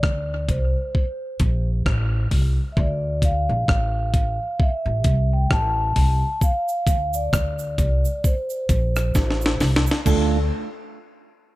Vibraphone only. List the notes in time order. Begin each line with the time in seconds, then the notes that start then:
Already playing: D5
0.49 C5
2.72 E5
2.79 D5
3.25 F5
4.62 E5
5.33 G5
5.52 A5
6.43 F5
7.15 D5
7.80 D5
8.26 C5
10.08 A4